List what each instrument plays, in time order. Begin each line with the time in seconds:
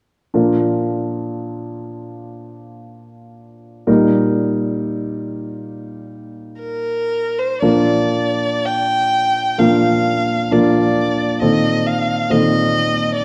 0.34 grand piano A#2 F3 D4 A#4
3.87 grand piano A#2 G3 D#4 A#4
6.61 violin A#4
7.39 violin C5
7.62 grand piano A#2 F3 D4 A#4, violin D5
8.65 violin G5
9.58 grand piano A#2 F3 D4 A#4, violin F5
10.51 grand piano A#2 F3 D4 A#4, violin D5
11.41 grand piano A#2 D#3 C4 A4, violin D#5
11.87 violin F5
12.30 grand piano A#2 D#3 C4 A4, violin D#5
13.16 violin D5